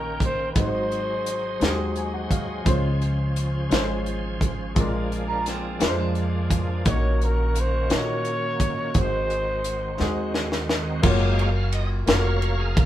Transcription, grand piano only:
Already playing: G2 A#3 D#4 G4 A4 A#4 C#5 G5
0.55 G#2 G#3 D#4 F#4 B4
0.65 C5
1.60 G#3 D#4 F#4 G4
1.70 G#4
1.97 G#5
2.14 F#5
2.31 F5
2.64 C#3 G#3 C#4 F4 C5
3.69 G#3 C#4 F4 C5
4.75 A#2 G#3 C4 F4 A#4
4.83 D4
5.79 G#3 D4 F4 B4
5.89 C5
6.84 A#2 A#3 D#4 F#4 C#5
7.88 A#3 D#4 F4 C#5
7.97 F#4
8.94 G#2 G#3 D#4 F#4 C5
9.98 G#3 D#4 F#4 G#4
11.02 A#3 F4 F#4 C#5
12.06 A#3 F4 F#4 A#4

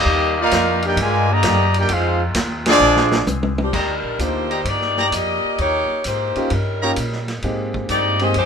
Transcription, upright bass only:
0.05 D#2
0.52 F2
0.96 G2
1.44 F#2
1.90 F2
2.35 D#2
2.80 A#1
3.26 C2
3.73 D#2
3.88 D2
4.03 A#1
4.19 D2
4.65 G2
5.11 F2
5.44 muted upright bass stroke
5.59 D#2
5.90 muted upright bass stroke
6.05 G#2
6.36 muted upright bass stroke
6.51 G2
6.97 A#2
7.43 G#2
7.89 G2
8.36 F2

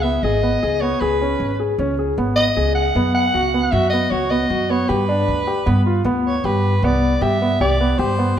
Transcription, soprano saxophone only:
0.02 E5
0.23 D#5
0.81 C#5
1.00 B4
2.36 D#5
2.75 F#5
3.15 F#5
3.71 E5
3.90 D#5
4.10 C#5
4.30 D#5
4.70 C#5
4.89 B4
6.26 C#5
6.45 B4
6.84 D5
7.22 E5
7.61 D5
7.98 C5

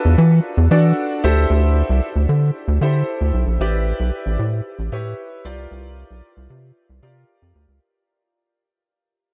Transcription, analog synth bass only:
0.05 E2
0.18 E3
0.57 E2
0.71 E3
1.24 D2
1.50 D2
1.90 C2
2.16 D2
2.29 D3
2.68 D2
2.81 D3
3.21 D2
3.34 B1
3.47 A#1
3.60 A1
4.00 B1
4.26 A1
4.39 A2
4.79 A1
4.92 A2
5.45 C2
5.71 C2
6.11 B1
6.37 C2
6.50 C3
6.90 C2
7.03 C3
7.42 F2
7.55 D2
7.68 C#2

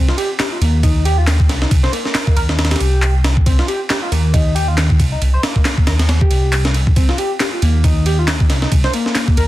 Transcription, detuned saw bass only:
Already playing: C2
0.61 D#2
1.49 C2
1.71 C2
2.37 D#2
2.81 C2
3.46 C2
4.12 D#2
5.00 C2
5.22 C2
5.87 D#2
6.31 C2
6.96 C2
7.62 D#2
8.50 C2
8.72 C2
9.37 D#2

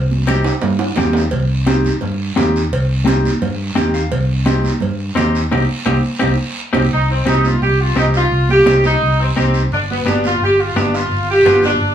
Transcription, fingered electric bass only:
Already playing: C2
0.63 G2
0.97 D#2
1.33 C2
2.03 G2
2.38 D#2
2.72 C2
3.42 G2
3.77 D#2
4.12 C2
4.83 G2
5.17 D#2
5.52 C2
5.86 C2
6.22 C2
6.75 C2
6.92 C2
7.27 C2
7.62 C2
7.96 C2
8.31 C2
8.66 C2
9.01 C2
9.37 C2
9.71 G1
10.06 G1
10.41 G1
10.76 G1
11.11 G1
11.46 G1
11.81 G1

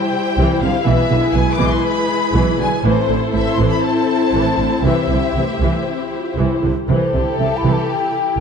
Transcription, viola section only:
Already playing: E4
0.38 E3
0.63 D3
0.86 E3
1.11 D3
1.34 E3
1.60 E3
2.34 E3
2.59 D3
2.84 E3 E4
3.08 D3
3.33 E3
3.57 E3
4.33 E3
4.59 D3
4.85 E3
5.11 D3
5.36 E3
5.62 E3
6.38 E3
6.62 D3
6.88 E3 E4
7.14 D3
7.40 E3
7.65 E3

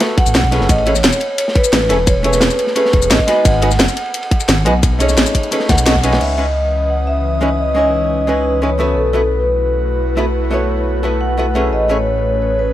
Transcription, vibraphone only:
0.18 F#5
0.69 D#5
0.86 C#5
1.38 C#5
1.55 B4
2.07 C#5
2.24 B4
2.76 B4
3.10 D#5
3.45 F#5
5.69 F#5
6.21 E5
6.38 D#5
6.90 F#5
7.07 E5
7.59 D#5
7.76 D#5
8.28 B4
8.62 C#5
8.97 A4
9.31 B4
11.21 F#5
11.73 D#5
11.90 C#5
12.42 C#5
12.59 B4

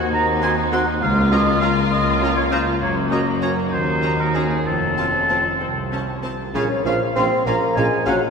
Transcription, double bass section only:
0.12 D#2
1.01 C#2
1.91 C#2
2.80 F#1
3.72 D#2
4.66 F1
5.61 C2
6.55 A#1
6.85 A#1
7.16 A#1
7.46 A#1
7.76 A#1
8.06 A#1

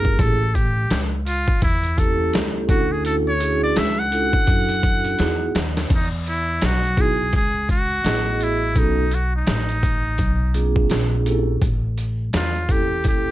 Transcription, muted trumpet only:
Already playing: A#4
0.20 A4
0.55 G4
1.27 F4
1.63 E4
1.99 A4
2.70 F#4
2.92 G#4
3.06 A4
3.28 C#5
3.63 D5
3.78 E5
3.99 F#5
5.94 D#4
6.29 E4
6.65 F#4
7.01 G#4
7.36 G#4
7.71 F#4
8.43 E4
8.78 D#4
9.15 F#4
9.36 D#4
12.36 F4
12.71 G4
13.08 G4

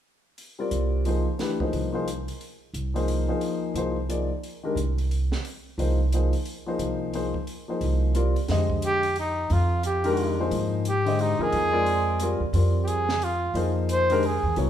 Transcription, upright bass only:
0.71 C2
1.73 C2
2.73 C2
3.74 C2
4.75 C2
5.78 C2
6.79 C2
7.81 C2
8.48 F2
9.50 F2
10.51 G#2
11.39 muted upright bass stroke
11.52 F2
12.40 D#2
12.53 F2
13.54 F2
14.43 E2
14.57 C2

